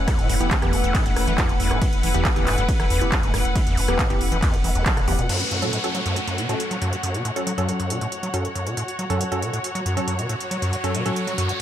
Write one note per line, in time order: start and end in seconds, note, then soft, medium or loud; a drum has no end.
0.00 5.34 A3 medium
0.00 5.34 C#4 medium
0.00 6.57 E4 medium
0.00 6.75 B4 medium
0.00 11.62 F#5 medium
0.08 0.20 E2 medium
0.08 kick loud
0.08 cross-stick medium
0.08 closed hi-hat medium
0.08 ride medium
0.19 0.29 E1 medium
0.19 0.28 A2 medium
0.19 closed hi-hat medium
0.29 0.40 E1 loud
0.29 0.36 G2 medium
0.29 open hi-hat loud
0.40 0.51 E1 medium
0.40 0.56 E3 medium
0.40 0.56 B3 medium
0.40 0.56 G4 medium
0.40 closed hi-hat medium
0.51 0.57 E3 medium
0.51 kick loud
0.51 clap loud
0.51 closed hi-hat medium
0.51 ride medium
0.62 0.72 E1 medium
0.62 0.74 E2 loud
0.62 1.36 E3 loud
0.62 1.36 B3 medium
0.62 1.36 G4 loud
0.62 cross-stick medium
0.62 closed hi-hat soft
0.73 0.83 E1 loud
0.73 0.77 F#2 medium
0.73 open hi-hat medium
0.84 0.94 E1 medium
0.84 0.96 E2 medium
0.84 closed hi-hat medium
0.95 1.04 A2 medium
0.95 kick loud
0.95 clap medium
0.95 closed hi-hat medium
0.95 ride medium
1.06 1.16 E1 medium
1.06 1.12 G2 medium
1.06 closed hi-hat medium
1.16 1.27 E1 loud
1.16 cross-stick medium
1.16 open hi-hat loud
1.27 1.38 E1 medium
1.27 1.33 E3 medium
1.27 closed hi-hat medium
1.38 1.51 E2 loud
1.38 1.54 E3 medium
1.38 1.54 B3 medium
1.38 1.54 G4 loud
1.38 kick loud
1.38 clap loud
1.38 closed hi-hat medium
1.38 ride medium
1.49 1.59 E1 medium
1.49 1.53 F#2 medium
1.49 closed hi-hat soft
1.60 1.70 E1 loud
1.60 1.72 E2 medium
1.60 open hi-hat medium
1.71 1.81 E1 medium
1.71 1.80 A2 medium
1.71 cross-stick medium
1.71 closed hi-hat medium
1.82 1.88 G2 medium
1.82 kick loud
1.82 closed hi-hat medium
1.82 ride medium
1.93 2.03 E1 medium
1.93 closed hi-hat medium
2.03 2.14 E1 loud
2.03 2.09 E3 medium
2.03 open hi-hat loud
2.14 2.25 E1 medium
2.14 2.27 E2 loud
2.14 2.30 E3 medium
2.14 2.30 B3 medium
2.14 2.30 G4 loud
2.14 closed hi-hat medium
2.25 2.29 F#2 medium
2.25 kick loud
2.25 cross-stick medium
2.25 clap loud
2.25 closed hi-hat medium
2.25 ride medium
2.36 2.46 E1 medium
2.36 2.48 E2 medium
2.36 2.46 E3 loud
2.36 2.46 B3 medium
2.36 2.46 G4 loud
2.36 closed hi-hat medium
2.47 2.57 E1 loud
2.47 2.56 A2 medium
2.47 clap medium
2.47 open hi-hat medium
2.58 2.68 E1 medium
2.58 2.64 G2 medium
2.58 closed hi-hat medium
2.69 kick loud
2.69 closed hi-hat loud
2.69 ride medium
2.80 2.90 E1 medium
2.80 2.85 E3 medium
2.80 cross-stick medium
2.80 closed hi-hat medium
2.90 3.01 E1 loud
2.90 3.03 E2 loud
2.90 open hi-hat loud
3.01 3.12 E1 medium
3.01 3.05 F#2 medium
3.01 3.17 E3 medium
3.01 3.17 B3 medium
3.01 3.17 G4 loud
3.01 closed hi-hat medium
3.12 3.25 E2 medium
3.12 kick loud
3.12 clap loud
3.12 closed hi-hat medium
3.12 ride medium
3.23 3.33 E1 medium
3.23 3.32 A2 medium
3.23 closed hi-hat medium
3.34 3.44 E1 loud
3.34 3.40 G2 medium
3.34 cross-stick medium
3.34 open hi-hat medium
3.45 3.55 E1 medium
3.45 closed hi-hat medium
3.56 3.62 E3 medium
3.56 kick loud
3.56 closed hi-hat medium
3.56 ride medium
3.67 3.77 E1 medium
3.67 3.79 E2 loud
3.67 closed hi-hat medium
3.77 3.88 E1 loud
3.77 3.81 F#2 medium
3.77 open hi-hat loud
3.88 3.99 E1 medium
3.88 4.01 E2 medium
3.88 4.04 E3 medium
3.88 4.04 B3 medium
3.88 4.04 G4 loud
3.88 cross-stick medium
3.88 closed hi-hat medium
3.99 4.08 A2 medium
3.99 kick loud
3.99 clap loud
3.99 closed hi-hat medium
3.99 ride medium
4.10 4.20 E1 medium
4.10 4.16 G2 medium
4.10 4.83 E3 loud
4.10 4.83 B3 medium
4.10 4.83 G4 loud
4.10 closed hi-hat medium
4.21 4.31 E1 loud
4.21 open hi-hat medium
4.32 4.42 E1 medium
4.32 4.38 E3 medium
4.32 closed hi-hat medium
4.42 4.55 E2 loud
4.42 kick loud
4.42 cross-stick medium
4.42 clap medium
4.42 closed hi-hat loud
4.42 ride medium
4.54 4.64 E1 medium
4.54 4.57 F#2 medium
4.54 closed hi-hat medium
4.64 4.75 E1 medium
4.64 4.70 E3 medium
4.64 open hi-hat loud
4.75 4.86 E1 medium
4.75 4.84 E2 medium
4.75 closed hi-hat medium
4.86 4.92 E3 medium
4.86 kick loud
4.86 clap loud
4.86 closed hi-hat medium
4.86 ride medium
4.97 5.07 E1 medium
4.97 5.01 B2 medium
4.97 cross-stick medium
4.97 closed hi-hat medium
5.08 5.18 E1 loud
5.08 5.14 D2 loud
5.08 5.18 E3 loud
5.08 5.18 B3 medium
5.08 5.18 G4 loud
5.08 open hi-hat medium
5.19 5.29 E1 medium
5.19 5.28 B2 medium
5.19 closed hi-hat medium
5.29 5.42 F#2 loud
5.29 11.62 F#4 medium
5.29 closed hi-hat medium
5.29 crash medium
5.29 downlifter medium
5.40 5.44 G2 medium
5.40 closed hi-hat medium
5.49 5.64 F#2 medium
5.49 11.62 C#5 medium
5.49 closed hi-hat medium
5.62 5.71 B2 medium
5.62 5.78 F#3 medium
5.62 5.78 C#4 medium
5.62 5.78 A4 loud
5.62 closed hi-hat medium
5.73 5.79 A2 medium
5.73 closed hi-hat medium
5.84 5.94 F#3 medium
5.84 5.94 C#4 medium
5.84 5.94 A4 loud
5.84 closed hi-hat medium
5.95 6.01 F#3 medium
5.95 closed hi-hat medium
6.06 6.18 F#2 loud
6.06 closed hi-hat medium
6.16 6.20 G2 medium
6.16 closed hi-hat medium
6.27 6.40 F#2 medium
6.27 closed hi-hat medium
6.38 6.47 B2 medium
6.38 closed hi-hat medium
6.49 6.55 A2 medium
6.49 6.65 F#3 medium
6.49 6.65 C#4 medium
6.49 6.65 A4 medium
6.49 closed hi-hat medium
6.60 closed hi-hat medium
6.71 6.77 F#3 medium
6.71 closed hi-hat soft
6.82 6.94 F#2 loud
6.82 closed hi-hat medium
6.93 6.96 G2 medium
6.93 closed hi-hat medium
7.03 7.16 F#2 medium
7.03 closed hi-hat medium
7.14 7.23 B2 medium
7.14 closed hi-hat medium
7.25 7.31 A2 medium
7.25 closed hi-hat medium
7.36 7.52 F#3 medium
7.36 7.52 C#4 medium
7.36 7.52 A4 medium
7.36 closed hi-hat medium
7.47 7.53 F#3 medium
7.47 closed hi-hat medium
7.58 7.70 F#2 loud
7.58 8.31 F#3 medium
7.58 8.31 C#4 medium
7.58 8.31 A4 loud
7.58 closed hi-hat medium
7.69 7.72 G2 medium
7.69 closed hi-hat medium
7.80 7.92 F#2 medium
7.80 closed hi-hat medium
7.90 7.99 B2 medium
7.90 closed hi-hat loud
8.01 8.07 A2 medium
8.01 closed hi-hat medium
8.12 closed hi-hat medium
8.23 8.29 F#3 medium
8.23 closed hi-hat medium
8.34 8.46 F#2 loud
8.34 8.50 F#3 medium
8.34 8.50 C#4 medium
8.34 8.50 A4 loud
8.34 closed hi-hat medium
8.45 8.48 G2 medium
8.45 closed hi-hat medium
8.55 8.68 F#2 medium
8.55 closed hi-hat medium
8.67 8.75 B2 medium
8.67 closed hi-hat medium
8.77 8.83 A2 medium
8.77 closed hi-hat medium
8.77 riser medium
8.88 closed hi-hat medium
8.99 9.05 F#3 medium
8.99 closed hi-hat medium
9.10 9.22 F#2 loud
9.10 9.26 F#3 medium
9.10 9.26 C#4 medium
9.10 9.26 A4 loud
9.10 closed hi-hat medium
9.21 9.24 G2 medium
9.21 closed hi-hat medium
9.32 9.44 F#2 medium
9.32 9.41 F#3 medium
9.32 9.41 C#4 medium
9.32 9.41 A4 loud
9.32 closed hi-hat medium
9.42 9.52 B2 medium
9.42 closed hi-hat medium
9.53 9.59 A2 medium
9.53 closed hi-hat medium
9.64 closed hi-hat medium
9.75 9.81 F#3 medium
9.75 closed hi-hat medium
9.86 9.98 F#2 loud
9.86 closed hi-hat medium
9.97 10.00 G2 medium
9.97 10.13 F#3 medium
9.97 10.13 C#4 medium
9.97 10.13 A4 medium
9.97 closed hi-hat medium
10.08 10.20 F#2 medium
10.08 closed hi-hat medium
10.19 10.27 B2 medium
10.19 closed hi-hat soft
10.29 10.35 A2 medium
10.29 closed hi-hat medium
10.40 closed hi-hat medium
10.51 10.57 F#3 medium
10.51 closed hi-hat medium
10.62 10.74 F#2 loud
10.62 closed hi-hat medium
10.73 10.76 G2 medium
10.73 closed hi-hat medium
10.84 10.96 F#2 medium
10.84 11.00 F#3 medium
10.84 11.00 C#4 medium
10.84 11.00 A4 loud
10.84 closed hi-hat medium
10.95 11.04 B2 medium
10.95 closed hi-hat medium
11.06 11.11 A2 medium
11.06 11.62 F#3 medium
11.06 11.62 C#4 medium
11.06 11.62 A4 loud
11.06 closed hi-hat soft
11.16 closed hi-hat medium
11.27 11.33 F#3 medium
11.27 closed hi-hat medium
11.38 11.51 F#2 loud
11.38 closed hi-hat medium
11.49 11.53 G2 medium
11.49 closed hi-hat medium